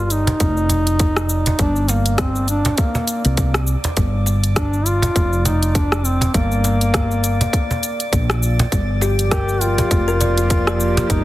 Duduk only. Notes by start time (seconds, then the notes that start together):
0.05 F4
0.11 D#4
1.60 D4
1.90 A#3
2.20 C4
2.49 D4
2.79 A#3
4.57 D4
4.86 F4
5.45 D#4
5.75 D4
6.04 C4
6.34 A#3
9.31 G4
9.61 F4
11.09 D#4